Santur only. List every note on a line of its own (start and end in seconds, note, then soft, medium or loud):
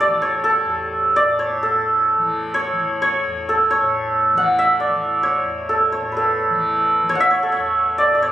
0.00 1.06 G4 medium
0.00 0.43 A4 medium
0.00 0.82 B4 medium
0.00 0.28 D5 loud
0.22 1.22 C#5 medium
0.44 1.62 A4 medium
1.16 1.45 D5 loud
1.39 2.54 C#5 medium
1.63 3.48 A4 medium
2.54 3.01 C#5 loud
3.02 3.70 C#5 loud
3.49 5.69 A4 medium
3.71 4.86 C#5 medium
4.37 6.53 F#5 medium
4.59 6.88 E5 medium
4.80 5.29 D5 medium
5.23 5.92 C#5 medium
5.69 6.16 A4 medium
5.92 7.09 C#5 medium
6.12 8.32 B4 soft
6.17 7.42 A4 medium
7.09 7.30 C#5 medium
7.15 8.32 F#5 medium
7.20 8.32 E5 loud
7.31 7.52 C#5 medium
7.43 8.32 A4 medium
7.52 8.04 C#5 medium
7.98 8.14 D5 loud
8.15 8.28 D5 medium
8.22 8.32 C#5 medium